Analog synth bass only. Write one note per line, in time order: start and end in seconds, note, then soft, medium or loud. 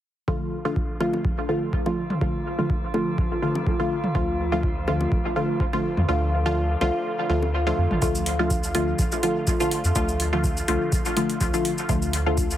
4.15 5.06 D2 loud
5.12 5.21 A1 loud
5.97 6.05 F2 medium
6.09 6.76 D2 loud
6.81 6.90 C2 loud
7.29 7.72 D2 medium
7.78 7.87 F2 medium
7.91 7.99 A1 medium
8.02 8.93 D2 loud
8.99 9.08 A1 loud
9.84 9.92 F2 medium
9.96 10.63 D2 loud
10.68 10.77 C2 loud
11.41 11.50 C2 loud
11.89 12.57 D2 loud